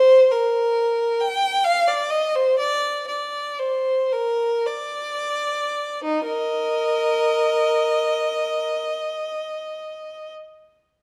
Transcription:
Already playing: C5
0.31 A#4
1.20 G5
1.65 F5
1.87 D5
2.10 D#5
2.35 C5
2.58 D5
3.07 D5
3.59 C5
4.12 A#4
4.67 D5
6.04 D#4
6.25 A#4 D#5

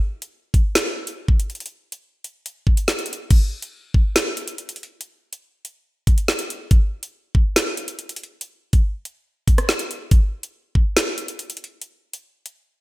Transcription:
0.22 closed hi-hat
0.54 kick, closed hi-hat
0.75 snare, closed hi-hat
1.07 closed hi-hat
1.28 kick
1.40 closed hi-hat
1.50 closed hi-hat
1.55 closed hi-hat
1.60 closed hi-hat
1.66 closed hi-hat
1.92 closed hi-hat
2.24 closed hi-hat
2.46 closed hi-hat
2.67 kick
2.77 closed hi-hat
2.88 snare, closed hi-hat
2.99 closed hi-hat
3.06 closed hi-hat
3.13 closed hi-hat
3.30 kick, closed hi-hat, crash
3.62 closed hi-hat
3.94 kick
4.16 snare, closed hi-hat
4.37 closed hi-hat
4.48 closed hi-hat
4.58 closed hi-hat
4.69 closed hi-hat
4.76 closed hi-hat
4.83 closed hi-hat
5.01 closed hi-hat
5.33 closed hi-hat
5.65 closed hi-hat
6.07 kick, closed hi-hat
6.18 closed hi-hat
6.28 snare
6.39 closed hi-hat
6.50 closed hi-hat
6.71 kick, closed hi-hat
7.03 closed hi-hat
7.35 kick
7.56 snare, closed hi-hat
7.77 closed hi-hat
7.88 closed hi-hat
7.99 closed hi-hat
8.09 closed hi-hat
8.16 closed hi-hat
8.23 closed hi-hat
8.41 closed hi-hat
8.73 kick, closed hi-hat
9.05 closed hi-hat
9.48 kick, closed hi-hat
9.58 cross-stick, closed hi-hat
9.69 snare
9.79 closed hi-hat
9.91 closed hi-hat
10.11 kick, closed hi-hat
10.43 closed hi-hat
10.75 kick
10.97 snare, closed hi-hat
11.18 closed hi-hat
11.28 closed hi-hat
11.39 closed hi-hat
11.50 closed hi-hat
11.57 closed hi-hat
11.64 closed hi-hat
11.82 closed hi-hat
12.13 closed hi-hat
12.46 closed hi-hat

